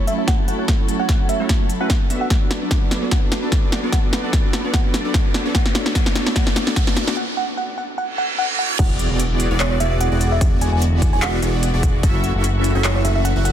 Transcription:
Already playing: string section F#3 E4 A4
0.07 analog polysynth A3 C#4 E4 F#4 C#5, fm electric piano E5, closed hi-hat
0.18 fm electric piano E5
0.28 fm electric piano F#5, kick, snare, closed hi-hat
0.39 analog polysynth A3 C#4 E4 F#4 C#5
0.48 fm electric piano F#5, closed hi-hat
0.59 fm electric piano F#5
0.68 kick, snare, closed hi-hat
0.88 closed hi-hat
0.99 analog polysynth A3 C#4 E4 F#4 C#5, fm electric piano F#5
1.09 kick, snare, closed hi-hat
1.29 fm electric piano E5, closed hi-hat
1.40 analog polysynth A3 C#4 E4 F#4 C#5
1.49 kick, snare, closed hi-hat
1.70 closed hi-hat
1.80 analog polysynth A3 C#4 E4 F#4 B4, fm electric piano F#5
1.90 kick, snare, closed hi-hat
2.10 analog polysynth B3 D4 F#4 A4 E5, string section D4 B4, closed hi-hat
2.21 fm electric piano F#5
2.30 kick, snare, closed hi-hat, riser
2.51 snare, closed hi-hat
2.62 analog polysynth B3 D4 F#4 A4 D5
2.71 kick, snare, closed hi-hat
2.91 snare, closed hi-hat
3.02 analog polysynth B3 D4 F#4 A4 D5
3.11 analog polysynth B3 F#4, fm electric piano F#5, kick, snare, closed hi-hat
3.32 snare, closed hi-hat
3.43 analog polysynth B3 D4 F#4 A4 D5
3.52 kick, snare, closed hi-hat
3.72 snare, closed hi-hat
3.83 analog polysynth B3 D4 F#4 A4 D5
3.92 analog polysynth B3 D4 F#4 A4 D5, fm electric piano F#5, kick, snare, closed hi-hat
4.13 snare, closed hi-hat
4.24 analog polysynth B3 D4 F#4 A4 D5
4.33 kick, snare, closed hi-hat
4.53 snare, closed hi-hat
4.64 analog polysynth B3 D4 F#4 A4 D5
4.74 analog polysynth B3 D4 F#4 A4 D5, fm electric piano F#5, kick, snare, closed hi-hat
4.94 snare, closed hi-hat
5.05 analog polysynth B3 D4 F#4 A4 D5
5.14 kick, snare, closed hi-hat
5.34 snare, closed hi-hat
5.45 analog polysynth B3 D4 F#4 A4 D5
5.55 string section A3 D4 C#5, analog polysynth B3 A4, fm electric piano F#5, kick, snare, closed hi-hat
5.66 snare
5.75 snare, closed hi-hat
5.86 analog polysynth B3 D4 F#4 A4 D5, snare
5.95 analog polysynth B3, fm electric piano F#5, kick, snare, closed hi-hat
6.06 snare
6.15 snare, closed hi-hat
6.26 analog polysynth B3 D4 F#4 A4 D5, snare
6.36 analog polysynth B3 D4 D5, fm electric piano F#5, kick, snare, closed hi-hat
6.47 snare
6.56 snare, closed hi-hat
6.67 analog polysynth B3 D4 F#4 A4 D5, snare
6.76 fm electric piano F#5, kick, snare, closed hi-hat
6.87 snare
6.97 snare, closed hi-hat
7.08 analog polysynth B3 D4 F#4 A4 D5, snare
7.17 fm electric piano F#5
7.37 fm electric piano F#5
7.57 fm electric piano F#5
7.78 fm electric piano F#5
7.98 fm electric piano F#5, reverse cymbal
8.18 fm electric piano F#5
8.38 fm electric piano F#5
8.59 fm electric piano F#5
8.79 analog synth bass E1, string section D3 G#3 F#4, analog polysynth B3 E4 F#4 G#4 D5, fm electric piano F#5, kick, closed hi-hat, crash, impact
8.99 closed hi-hat
9.10 analog synth bass E1, analog polysynth B3 E4 F#4 G#4 D5
9.20 closed hi-hat
9.40 closed hi-hat
9.51 analog synth bass E1, analog polysynth B3 E4 F#4 G#4 D5
9.60 fm electric piano C#5, clap, closed hi-hat
9.71 fm electric piano C#5
9.80 analog synth bass E1, analog polysynth B3 E4 F#4 G#4 D5, fm electric piano E5, closed hi-hat
9.91 fm electric piano E5
10.01 fm electric piano F#5, closed hi-hat
10.11 analog synth bass E1, analog polysynth B3 E4 F#4 G#4 D5
10.21 closed hi-hat
10.32 fm electric piano E5
10.41 analog synth bass E1, analog polysynth B3 F#4, kick, closed hi-hat
10.61 fm electric piano G#5, closed hi-hat
10.72 analog synth bass E1, analog polysynth B3 E4 F#4 G#4 D5, fm electric piano G#5
10.82 closed hi-hat
11.02 kick, closed hi-hat
11.13 analog synth bass E1, analog polysynth B3 E4 F#4 G#4 D5, fm electric piano G#5
11.22 fm electric piano F#5, clap, closed hi-hat
11.42 analog synth bass E1, analog polysynth B3 E4 F#4 G#4 D5, closed hi-hat
11.63 closed hi-hat
11.74 analog synth bass E1, analog polysynth B3 E4 F#4 G#4 D5
11.83 kick, closed hi-hat
12.03 analog synth bass F#1, string section E3 A3, analog polysynth C#4 E4 F#4 A4 E5, kick, closed hi-hat
12.24 closed hi-hat
12.35 analog synth bass F#1, analog polysynth C#4 E4 F#4 A4 E5
12.44 closed hi-hat
12.64 closed hi-hat
12.75 analog synth bass F#1, analog polysynth C#4 E4 F#4 A4 E5
12.84 fm electric piano C#5, clap, closed hi-hat
12.95 fm electric piano C#5
13.05 analog synth bass F#1, analog polysynth C#4 E4 F#4 A4 E5, fm electric piano E5, closed hi-hat
13.15 fm electric piano E5
13.25 fm electric piano F#5, closed hi-hat
13.36 analog synth bass F#1, analog polysynth C#4 E4 F#4 A4 E5
13.45 fm electric piano F#5, closed hi-hat

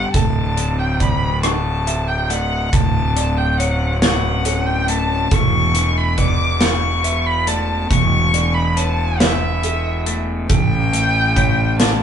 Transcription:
Already playing: clean electric guitar G3 B3 G4, felt piano A4, violin F#5
0.14 fingered electric bass D1, clean electric guitar D2, felt piano A4, violin A5, kick, closed hi-hat
0.57 clean electric guitar D3, closed hi-hat
0.79 violin G5
1.00 felt piano D5, violin B5, kick, closed hi-hat
1.43 clean electric guitar F#4, violin A5, cross-stick, closed hi-hat
1.87 felt piano E5, closed hi-hat
2.08 violin G5
2.29 clean electric guitar A3, felt piano D5, violin F#5, closed hi-hat
2.73 fingered electric bass D1, clean electric guitar D2, violin A5, kick, closed hi-hat
3.16 clean electric guitar D3, felt piano D5, closed hi-hat
3.37 violin G5
3.58 clean electric guitar C#4, felt piano C#5, violin F#5, closed hi-hat
4.02 clean electric guitar F#4, felt piano B4, violin F#5, snare, closed hi-hat
4.45 clean electric guitar C#4, felt piano A4, closed hi-hat
4.66 violin G5
4.88 clean electric guitar A3, violin A5, closed hi-hat
5.31 fingered electric bass E1, clean electric guitar E2, felt piano A4, violin C#6, kick, closed hi-hat
5.75 clean electric guitar E3, closed hi-hat
5.97 violin B5
6.18 clean electric guitar B3, felt piano D5, violin D6, kick, closed hi-hat
6.61 clean electric guitar E4, violin C#6, snare, closed hi-hat
7.04 clean electric guitar B3, felt piano E5, closed hi-hat
7.26 violin B5
7.47 clean electric guitar A3, felt piano D5, violin A5, closed hi-hat
7.90 fingered electric bass E1, clean electric guitar E2, violin C#6, kick, closed hi-hat
8.34 clean electric guitar E3, felt piano D5, closed hi-hat
8.54 violin B5
8.77 clean electric guitar B3, felt piano C#5, violin A5, closed hi-hat
9.20 clean electric guitar E4, felt piano B4, violin E5, snare, closed hi-hat
9.63 clean electric guitar B3, felt piano A4, closed hi-hat
10.06 clean electric guitar A3, closed hi-hat
10.49 fingered electric bass A1, clean electric guitar A2, felt piano A4, violin G5, kick, closed hi-hat
10.93 clean electric guitar A3, closed hi-hat
11.36 clean electric guitar E4, felt piano C#5, kick, closed hi-hat
11.80 clean electric guitar A4, violin A5, snare, closed hi-hat

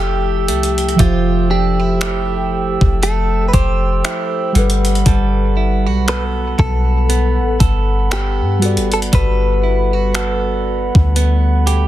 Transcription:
Already playing: 808-style bass F1, synth keys F3 E4 G4 A4, clean electric guitar F3 A3, glass harmonica A4 G5 E6
0.00 clean electric guitar G4
0.48 808-style bass C2, clean electric guitar A3, closed hi-hat
0.63 closed hi-hat
0.78 closed hi-hat
0.89 closed hi-hat
0.96 808-style bass F1, synth keys F3 E5, clean electric guitar F3, kick, closed hi-hat
1.00 clean electric guitar F4 G4, synth keys G4 C5
1.50 clean electric guitar D4 G4
1.80 clean electric guitar E4
2.01 clean electric guitar A3 E4 G4, finger snap, closed hi-hat
2.81 808-style bass F1, kick
3.03 clean electric guitar A3 A4, closed hi-hat
3.48 clean electric guitar B4
3.53 808-style bass F1, clean electric guitar G4 C5, kick, closed hi-hat
4.04 clean electric guitar A3 E4 G4, finger snap, closed hi-hat
4.52 808-style bass G1, synth keys G3 A4 F#5, clean electric guitar G3, glass harmonica F#5 B5, closed hi-hat
4.58 synth keys B4
4.70 closed hi-hat
4.85 closed hi-hat
4.95 closed hi-hat
5.06 808-style bass G1, clean electric guitar G3 A4, kick, closed hi-hat
5.57 clean electric guitar E4
5.86 808-style bass B1, clean electric guitar F#4
6.08 clean electric guitar B3 F#4 A4 B4, finger snap, closed hi-hat
6.59 808-style bass B1, clean electric guitar A4, kick
7.09 clean electric guitar B3, closed hi-hat
7.39 808-style bass A1
7.60 808-style bass G1, clean electric guitar A4, kick, closed hi-hat
8.11 clean electric guitar B3 G4 A4, finger snap, closed hi-hat
8.41 808-style bass G2
8.59 synth keys G3 F#4, clean electric guitar B3, closed hi-hat
8.63 synth keys A4 D5
8.77 808-style bass G1, closed hi-hat
8.92 clean electric guitar A4, closed hi-hat
9.02 closed hi-hat
9.13 808-style bass G1, clean electric guitar G3 A4 B4, kick, closed hi-hat
9.63 clean electric guitar E4
9.93 clean electric guitar F#4
10.14 clean electric guitar B3 F#4 A4, finger snap, closed hi-hat
10.95 808-style bass D2, kick
11.16 clean electric guitar B3, closed hi-hat
11.67 clean electric guitar G4, closed hi-hat

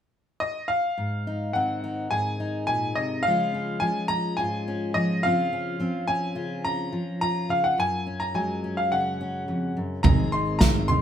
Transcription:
0.40 upright piano D#5
0.68 upright piano F5
0.98 steel-string acoustic guitar G#2
1.27 steel-string acoustic guitar D#4
1.53 steel-string acoustic guitar D#3 C4, upright piano F#5
1.84 steel-string acoustic guitar D#4
2.11 steel-string acoustic guitar G#2 G#4, upright piano G#5
2.40 steel-string acoustic guitar D#4
2.67 steel-string acoustic guitar A#2, upright piano G#5
2.95 steel-string acoustic guitar C3, upright piano D#5
3.23 steel-string acoustic guitar C#3, upright piano F5
3.27 steel-string acoustic guitar F3 G#3 C#4 F4
3.54 steel-string acoustic guitar C#4
3.80 steel-string acoustic guitar F3 G#3, upright piano G#5
4.08 steel-string acoustic guitar C#4, upright piano A#5
4.37 steel-string acoustic guitar G#2 F4, upright piano G#5
4.68 steel-string acoustic guitar C#4
4.94 steel-string acoustic guitar F3, upright piano D#5
5.23 steel-string acoustic guitar C#3 F3 C4 C#4 F4, upright piano F5
5.53 steel-string acoustic guitar C#4
5.80 steel-string acoustic guitar F3 C4
6.08 steel-string acoustic guitar C#4, upright piano G#5
6.35 steel-string acoustic guitar C#3 F4
6.65 steel-string acoustic guitar C#4, upright piano A#5
6.92 steel-string acoustic guitar F3
7.21 steel-string acoustic guitar F4, upright piano A#5
7.49 steel-string acoustic guitar C#3, upright piano F5
7.64 upright piano F#5
7.78 steel-string acoustic guitar F#2, upright piano G#5
8.07 steel-string acoustic guitar C#4
8.20 upright piano A#5
8.34 steel-string acoustic guitar F#3 G#3, upright piano G#5
8.64 steel-string acoustic guitar C#4
8.77 upright piano F5
8.92 steel-string acoustic guitar C#3 G#4, upright piano F#5
9.21 steel-string acoustic guitar C#4
9.48 steel-string acoustic guitar F2
9.77 steel-string acoustic guitar F#2
10.03 picked electric bass G#1, steel-string acoustic guitar G#2 D#3 C4 D#4, upright piano A#5, kick, floor tom
10.07 steel-string acoustic guitar G#4
10.32 steel-string acoustic guitar D#4, upright piano C6
10.59 steel-string acoustic guitar D#3, upright piano A#5, kick, snare
10.63 steel-string acoustic guitar C4
10.88 steel-string acoustic guitar D#4, upright piano C6, floor tom

